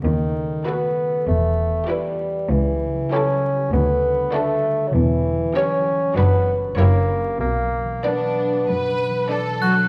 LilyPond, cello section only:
\new Staff \with { instrumentName = "Cello section" } { \clef bass \time 4/4 \key b \minor \tempo 4 = 97 dis,4 r4 e,4 r4 | cis,4 r4 d,4 r4 | e,4 r4 fis,4 fis,4 | b,4 r4 fis,4 r8 fis8 | }